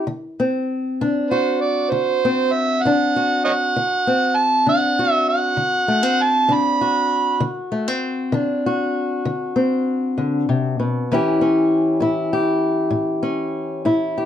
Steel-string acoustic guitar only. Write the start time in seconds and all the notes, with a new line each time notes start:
0.07 D3
0.40 C4
1.01 D3 D4
1.31 F#4
1.92 D3
2.25 C4
2.85 D3 D4
3.16 F#4
3.76 D3
4.07 C4
4.66 D3 D4
4.99 F#4
5.57 D3
5.88 A3
6.03 C4
6.48 D3 D4
6.81 F#4
7.40 D3
7.72 A3
7.88 C4
8.32 D3 D4
8.66 F#4
9.25 D3
9.56 C4
10.18 D3
10.49 C3
10.80 B2
11.12 A2 E3 C#4 E4 G4
11.41 C#4
12.00 A2 E4
12.33 G4
12.91 A2
13.23 C#4
13.85 A2 E4
14.18 G4